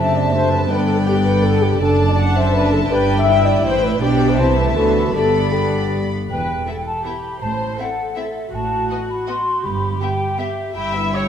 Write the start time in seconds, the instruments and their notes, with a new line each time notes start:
Already playing: double bass section F#1, cello section F#2, bassoon C3, viola section C4, clarinet D4, french horn section E5, violin section E5 A5, flute A5
0.16 french horn section D5
0.33 bassoon C3, viola section A3, clarinet D4, french horn section C5, flute A5
0.52 french horn section B4
0.70 double bass section G1, cello section G2, bassoon D3, viola section B3, clarinet D4, french horn section B4, violin section D5 G5, flute G5
0.88 french horn section A4
1.07 bassoon D3, clarinet D4, french horn section G4, flute G5
1.26 french horn section B4
1.44 french horn section A4
1.62 french horn section G4
1.81 double bass section F#1, cello section F#2, bassoon D3, viola section D4, clarinet D4, french horn section A4, violin section D5 A5, flute A5
2.09 french horn section D5
2.18 viola section D4, violin section F#5
2.37 french horn section C5, violin section E5
2.54 viola section D4, french horn section B4
2.72 french horn section A4
2.91 double bass section G1, cello section G2, bassoon G3, viola section D4, clarinet D4, french horn section B4, violin section D5 G5, flute G5
3.18 french horn section E5
3.27 viola section E4, violin section B4 G5
3.46 french horn section D5
3.65 double bass section A1, cello section A2, violin section B4 G5, french horn section C5
3.83 french horn section B4
4.01 double bass section B1, cello section B2, bassoon G3, viola section D4, clarinet D4, french horn section G4, violin section D5 G5, flute G5
4.30 french horn section C5
4.38 double bass section C2, cello section C3, bassoon E3, viola section C4, clarinet E4, violin section E5 A5, flute A5
4.57 viola section A3, french horn section B4
4.76 double bass section D2, cello section D3, bassoon E3, viola section B3, clarinet F#4, french horn section A4, flute B5
5.14 double bass section G1, cello section G2, bassoon D3, viola section B3, clarinet G4, french horn section A4, violin section D5 B5, flute B5
5.53 bassoon D3, french horn section G4, clarinet G4, flute B5
6.30 double bass section E1, cello section E2, viola section B4, flute G5
6.67 violin section B3 E4 E5, viola section A4
6.86 flute A5
7.04 violin section B3 E4 E5, viola section G4, flute B5
7.42 double bass section A1, cello section A2, viola section C5, flute A5
7.79 violin section C4 E4 E5, viola section A4, flute F#5
8.15 violin section C4 E4 E5, viola section A4, flute E5
8.53 double bass section A1, cello section A2, viola section F#4, flute A5
8.90 violin section B3 F#4 D#5
9.10 flute B5
9.28 violin section B3 F#4 D#5, flute C6
9.64 double bass section G1, cello section G2, viola section G4, flute B5
10.01 violin section B3 G4 E5, flute G5
10.38 violin section B3 G4 E5, flute E5
10.76 double bass section G1, cello section G2, violin section E4 G4 G5, viola section E5, flute B5
10.94 violin section B3 E4 E5
11.13 violin section E4 G4 G5, viola section C#5, flute E6